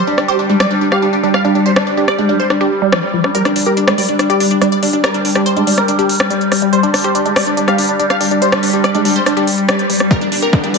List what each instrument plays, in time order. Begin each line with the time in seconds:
Already playing: synth drone G3
0.07 supersaw synth D4
0.18 supersaw synth D4, cross-stick
0.28 synth arpeggio sound G4, supersaw synth C5
0.39 supersaw synth D4
0.49 synth arpeggio sound G#3, supersaw synth D4
0.60 synth arpeggio sound G3, supersaw synth D5, cross-stick
0.71 supersaw synth D4
0.81 supersaw synth D4
0.92 synth arpeggio sound G4, supersaw synth F5, cross-stick
1.02 supersaw synth D4
1.13 supersaw synth D4
1.23 synth arpeggio sound G3, supersaw synth D4
1.34 supersaw synth F5, cross-stick
1.45 synth arpeggio sound G3, supersaw synth D4
1.55 synth arpeggio sound G3, supersaw synth D4
1.66 synth arpeggio sound G3, supersaw synth C5
1.76 supersaw synth D4, cross-stick
1.87 supersaw synth D4
1.97 supersaw synth D4, synth arpeggio sound G4
2.08 supersaw synth D5, cross-stick
2.18 synth arpeggio sound G#3, supersaw synth D4
2.29 synth arpeggio sound G3, supersaw synth D4
2.40 supersaw synth C5
2.50 supersaw synth D4, cross-stick
2.61 supersaw synth D4, synth arpeggio sound G4
2.82 synth arpeggio sound G3
2.92 synth arpeggio sound F3, cross-stick
3.14 synth arpeggio sound F3
3.24 synth arpeggio sound D4, cross-stick
3.35 synth drone G3, synth arpeggio sound G3, supersaw synth A#4, closed hi-hat
3.45 supersaw synth D4, cross-stick, closed hi-hat
3.56 supersaw synth D4, open hi-hat
3.66 synth arpeggio sound G4, supersaw synth A#4, closed hi-hat
3.77 supersaw synth D4, closed hi-hat
3.88 synth arpeggio sound G#3, supersaw synth D4, cross-stick, closed hi-hat
3.98 synth arpeggio sound G3, supersaw synth D5, open hi-hat
4.09 supersaw synth D4, closed hi-hat
4.19 supersaw synth D4, cross-stick, closed hi-hat
4.30 synth arpeggio sound G4, supersaw synth D5, closed hi-hat
4.40 supersaw synth D4, open hi-hat
4.51 supersaw synth D4, closed hi-hat
4.61 synth arpeggio sound G3, supersaw synth D4, cross-stick, closed hi-hat
4.72 supersaw synth D5, closed hi-hat
4.83 synth arpeggio sound G3, supersaw synth D4, open hi-hat
4.93 synth arpeggio sound G3, supersaw synth D4, closed hi-hat
5.04 synth arpeggio sound G3, supersaw synth A#4, cross-stick, closed hi-hat
5.14 supersaw synth D4, closed hi-hat
5.25 supersaw synth D4, open hi-hat
5.35 supersaw synth D4, synth arpeggio sound G4, cross-stick, closed hi-hat
5.46 supersaw synth C5, closed hi-hat
5.57 synth arpeggio sound G#3, supersaw synth D4, closed hi-hat
5.67 synth arpeggio sound G3, supersaw synth D4, open hi-hat
5.78 supersaw synth A#4, cross-stick
5.88 supersaw synth D4, closed hi-hat
5.99 supersaw synth D4, synth arpeggio sound G4, closed hi-hat
6.09 open hi-hat
6.20 cross-stick
6.30 synth arpeggio sound G3, closed hi-hat
6.41 closed hi-hat
6.52 synth arpeggio sound G3, cross-stick, open hi-hat
6.62 synth arpeggio sound G3, closed hi-hat
6.73 synth arpeggio sound G3, supersaw synth C5, closed hi-hat
6.83 supersaw synth D4, closed hi-hat
6.94 supersaw synth D4, cross-stick, open hi-hat
7.04 synth arpeggio sound G4, supersaw synth C5, closed hi-hat
7.15 supersaw synth D4, closed hi-hat
7.26 synth arpeggio sound G#3, supersaw synth D4, closed hi-hat
7.36 synth arpeggio sound G3, supersaw synth D5, cross-stick, open hi-hat
7.47 supersaw synth D4, closed hi-hat
7.57 supersaw synth D4, closed hi-hat
7.68 synth arpeggio sound G4, supersaw synth F5, cross-stick, closed hi-hat
7.78 supersaw synth D4, open hi-hat
7.89 supersaw synth D4, closed hi-hat
7.99 synth arpeggio sound G3, supersaw synth D4, closed hi-hat
8.10 supersaw synth F5, cross-stick, closed hi-hat
8.21 synth arpeggio sound G3, supersaw synth D4, open hi-hat
8.31 synth arpeggio sound G3, supersaw synth D4, closed hi-hat
8.42 synth arpeggio sound G3, supersaw synth C5, closed hi-hat
8.52 supersaw synth D4, cross-stick, closed hi-hat
8.63 supersaw synth D4, open hi-hat
8.73 supersaw synth D4, synth arpeggio sound G4, closed hi-hat
8.84 supersaw synth D5, cross-stick, closed hi-hat
8.95 synth arpeggio sound G#3, supersaw synth D4, closed hi-hat
9.05 synth arpeggio sound G3, supersaw synth D4, open hi-hat
9.16 supersaw synth C5, closed hi-hat
9.26 supersaw synth D4, cross-stick, closed hi-hat
9.37 supersaw synth D4, synth arpeggio sound G4, closed hi-hat
9.47 open hi-hat
9.58 closed hi-hat
9.69 synth arpeggio sound G3, cross-stick, closed hi-hat
9.79 closed hi-hat
9.90 synth arpeggio sound G3, open hi-hat
10.00 synth arpeggio sound G3, cross-stick
10.11 synth arpeggio sound G3, supersaw synth A#4, kick, closed hi-hat, riser
10.21 supersaw synth D4, closed hi-hat
10.32 supersaw synth D4, open hi-hat
10.42 synth arpeggio sound G4, supersaw synth A#4, closed hi-hat
10.53 supersaw synth D4, kick, closed hi-hat
10.64 synth arpeggio sound G3, supersaw synth D4, closed hi-hat
10.74 synth arpeggio sound G3, supersaw synth D5, open hi-hat